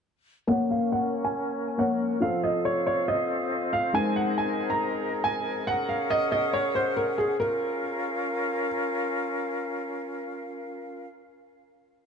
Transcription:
0.47 A#3 C#4 A#4 C#5 F#5
0.71 F5
0.92 F#5
1.25 G#5
1.78 A#3 A#4 C#5 F#5
2.20 F3 C4 F4 A4 C5 F5
2.44 D#5
2.65 C#5
2.87 C#5
3.08 D#5
3.73 F5
3.93 G#3 D#4 G#4 A#4 C5 D#5 G#5
4.16 F#5
4.38 G#5
4.70 A#5
5.24 G#5
5.67 C#4 G#4 F#5
5.89 F5
6.10 D#5
6.32 D#5
6.53 C#5
6.75 C5
6.97 A#4
7.18 G#4
7.40 C#4 F4 A#4 F5

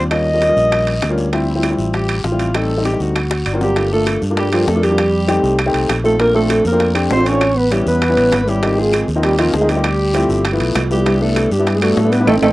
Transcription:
Already playing: D#2
0.10 G3 A#3 C#4 F4 D#5, high bongo, high timbale, long guiro, claves
0.27 high bongo
0.34 G3 A#3 C#4 F4
0.42 high bongo, high timbale, short guiro
0.49 G3 A#3 C#4 F4
0.57 A#1, high bongo, short guiro
0.72 high bongo, high timbale, long guiro, claves
0.87 high timbale
1.02 D2, high bongo, low bongo, high timbale, short guiro, claves
1.09 G3 A#3 C#4 F4
1.18 high bongo, short guiro
1.32 F3 G3 C4 E4, high bongo, high timbale, long guiro
1.49 E4
1.55 F3 G3 C4 E4
1.63 high bongo, high timbale, short guiro, claves
1.70 F3 G3 C4 E4
1.78 A1, short guiro
1.94 G4, high bongo, high timbale, long guiro
2.09 high timbale, claves
2.24 A1 F4, high bongo, low bongo, short guiro
2.31 F3 G3 C4 E4
2.39 high timbale, short guiro
2.54 G3 A3 C4 D#4 A4, high bongo, high timbale, long guiro, claves
2.70 high bongo
2.77 G3 A3 C4 D#4
2.85 G4, high bongo, high timbale, short guiro
2.92 G3 A3 C4 D#4
3.00 D2 F#4, high bongo, short guiro
3.15 high bongo, high timbale, long guiro, claves
3.31 high bongo, high timbale
3.46 G1 D5, high timbale, short guiro, claves
3.53 F#3 A#3 C4 F4
3.61 G3 G4 F#5, low bongo, short guiro
3.76 A3 A#3 D4 F4, high bongo, high timbale, long guiro
3.92 A3 A#3 D4 F4 A4
4.07 high bongo, high timbale, short guiro, claves
4.22 G2, short guiro
4.30 A3 A#3 D4 F4
4.37 G3 G4, high bongo, high timbale, long guiro
4.52 F3 A3 A#3 D4 F4 G4, high timbale, claves
4.67 F2 A3 A4, high bongo, low bongo, short guiro
4.74 A3 A#3 D4 F4
4.83 G3 G4, high timbale, short guiro
4.90 A3 A#3 D4 F4
4.98 high bongo, high timbale, long guiro, claves
5.14 high bongo
5.28 A3 C4 D#4 G4, high bongo, high timbale, short guiro
5.43 C2, high bongo, short guiro
5.59 high bongo, high timbale, long guiro, claves
5.66 A3 C4 D#4 G4
5.74 C2, high timbale
5.89 A#1, high bongo, low bongo, high timbale, short guiro, claves
6.04 A3 C4 D#4 F4 A4, high bongo, short guiro
6.18 A3 A#3 C4 D4 F4 A#4, high bongo, high timbale, long guiro
6.34 A3 C4 D4 F4 A4
6.50 high bongo, high timbale, short guiro, claves
6.65 F2 A#3 A#4, short guiro
6.72 A3 C4 D4 F4
6.80 high bongo, high timbale, long guiro
6.94 A3 C4 D4 G4, high timbale, claves
7.10 A1 C4 C5, high bongo, low bongo, low timbale, short guiro
7.17 A3 C4 D4 F4
7.26 C#4 C#5, high timbale, short guiro
7.32 A3 C4 D4 F4
7.41 high bongo, high timbale, long guiro, claves
7.55 B3 B4, high bongo
7.71 G3 B3 C#4 E4 G4, high bongo, high timbale, short guiro
7.86 E2 B3 B4, high bongo, short guiro
8.02 high bongo, high timbale, long guiro, claves
8.09 G3 B3 C#4 E4
8.17 A1, high timbale
8.32 G#1, high bongo, low bongo, high timbale, short guiro, claves
8.47 G3 B3 C#4 E4 G4, high bongo, short guiro
8.62 F3 A#3 C4 D#4, high bongo, high timbale, long guiro
8.77 F3 G#3 A#3 C4 F4 G#4
8.93 high bongo, high timbale, short guiro, claves
9.08 D#2, short guiro
9.15 F3 A#3 C4 D#4
9.23 G3 G4, high bongo, high timbale, long guiro
9.38 F3 A#3 C4 D#4 F4, high timbale, claves
9.53 D2 G#3 G#4, high bongo, low bongo, short guiro
9.60 F3 A#3 C4 D#4
9.69 G3 G4, high timbale, short guiro
9.76 F3 A#3 C4 D#4
9.84 high bongo, high timbale, long guiro, claves
9.99 high bongo
10.14 F3 A3 C4 E4, high bongo, high timbale, short guiro
10.29 G1, high bongo, short guiro
10.45 high bongo, high timbale, long guiro, claves
10.52 F3 A3 B3 E4
10.60 B1, high timbale
10.75 C2, high bongo, low bongo, high timbale, low timbale, short guiro, claves
10.90 F3 G3 A3 B3 E4 G4, high bongo, short guiro
11.05 G3 B3 D4 E4, high bongo, high timbale, long guiro
11.20 G3 A3 B3 D4 E4 A4
11.36 high bongo, high timbale, short guiro, claves
11.51 G2 G3 G4, short guiro
11.58 G3 B3 D4 E4
11.67 high bongo, high timbale, long guiro
11.74 G#3 G#4
11.81 G3 A3 B3 D4 F#4 A4, high timbale, claves
11.97 A2, high bongo, low bongo, short guiro
12.04 G3 B3 D4 E4
12.11 B3 B4, high timbale, short guiro
12.20 G3 B3 D4 E4
12.27 A1 A3 C4 D#4 A4, low bongo, high timbale, long guiro, claves
12.42 A1 A3 C4 D#4 A4, low bongo, high timbale, long guiro, claves

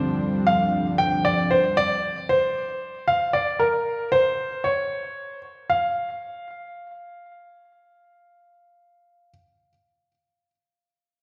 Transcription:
Already playing: D3 F3 G3 C4 D4 C5
0.47 F5
0.98 G5
1.25 D5
1.51 C5
1.77 D5
2.29 C5
3.08 F5
3.33 D5
3.60 A#4
4.12 C5
4.64 C#5
5.70 F5

